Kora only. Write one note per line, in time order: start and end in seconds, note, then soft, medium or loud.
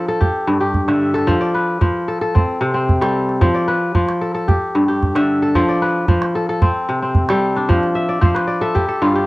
0.00 0.26 F3 medium
0.00 0.68 D4 medium
0.00 0.63 B4 medium
0.00 0.38 D5 medium
0.08 1.14 A4 medium
0.20 0.60 G4 medium
0.47 1.33 G2 medium
0.60 2.02 G4 medium
0.88 1.33 D3 medium
0.88 1.33 E5 medium
1.14 2.08 A4 medium
1.27 1.80 F3 medium
1.41 2.52 D5 medium
1.54 2.41 B4 medium
1.81 2.40 F3 medium
2.08 2.21 A4 medium
2.21 3.01 A4 medium
2.35 2.74 C4 medium
2.61 3.47 C3 medium
2.74 3.74 C4 medium
3.01 3.47 G3 medium
3.01 4.21 A4 medium
3.41 3.94 F3 medium
3.54 4.65 D5 medium
3.68 4.91 B4 medium
3.95 4.53 F3 medium
4.21 4.34 A4 medium
4.35 5.42 A4 medium
4.48 4.88 G4 medium
4.75 5.60 G2 medium
4.88 6.30 G4 soft
5.15 5.60 D3 medium
5.15 5.61 E5 medium
5.42 6.35 A4 medium
5.55 6.07 F3 medium
5.69 6.80 D5 medium
5.82 6.68 B4 medium
6.08 6.67 F3 medium
6.35 6.49 A4 medium
6.49 7.29 A4 medium
6.62 7.02 C4 medium
6.89 7.74 C3 medium
7.02 8.40 C4 soft
7.30 7.74 G3 medium
7.30 8.61 A4 medium
7.56 9.24 D4 medium
7.69 8.20 F3 medium
7.95 8.27 E5 medium
8.09 8.47 D5 medium
8.21 8.80 F3 medium
8.21 9.27 C5 medium
8.34 9.27 B4 medium
8.47 9.27 D5 medium
8.61 8.88 A4 medium
8.61 9.08 E5 medium
8.75 9.15 G4 medium
8.89 9.27 A4 medium
9.02 9.27 G2 medium
9.02 9.27 F4 medium
9.16 9.27 G4 medium